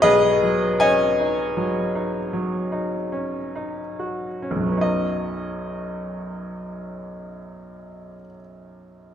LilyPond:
\new Staff \with { instrumentName = "Grand piano" } { \time 3/4 \key b \major \tempo 4 = 41 << { <gis' b' dis''>8 <cis'' dis'' gis''>2~ <cis'' dis'' gis''>8 | <b,, fis, fis b cis' dis' dis''>2. | } \\ { <b,, cis'>16 fis16 cis'16 dis'16 fis16 dis'16 fis16 dis'16 cis'16 dis'16 fis'16 cis'16 | r2. | } >> }